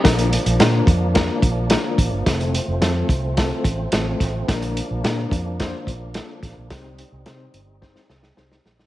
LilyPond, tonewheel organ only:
<<
  \new Staff \with { instrumentName = "Tonewheel organ" } { \time 4/4 \key bes \major \tempo 4 = 108 <bes d'>1 | <a c'>1 | <bes d'>1 | <c' ees'>1 | }
  \new Staff \with { instrumentName = "Tonewheel organ" } { \clef bass \time 4/4 \key bes \major f1~ | f1~ | f1 | g1 | }
>>